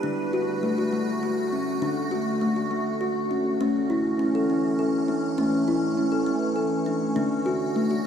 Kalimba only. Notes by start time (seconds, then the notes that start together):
0.03 D3 D4
0.33 F#4
0.63 A3
0.78 F#4
0.92 A3
1.23 F#4
1.52 C#4
1.82 D3 D4
2.11 F#4
2.41 A3
2.56 F#4
2.71 A3
3.01 F#4
3.31 C#4
3.61 A3 C#4
3.90 E4
4.19 C#4
4.35 A4
4.50 C#4
4.79 A4
5.08 D4
5.38 A3 C#4
5.68 E4
5.97 C#4
6.12 A4
6.26 C#4
6.56 A4
6.86 D4
7.16 D3 D4
7.46 F#4
7.76 A3
7.91 F#4